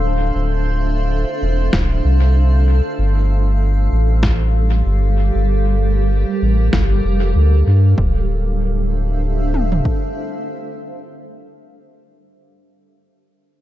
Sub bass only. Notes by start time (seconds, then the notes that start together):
Already playing: D1
0.35 D1
1.42 E1
1.73 D1
2.04 C2
2.98 G1
3.92 A1
4.86 G1
5.35 G1
6.42 A1
6.73 G1
7.04 F1
7.36 D2
7.67 G2
7.98 D1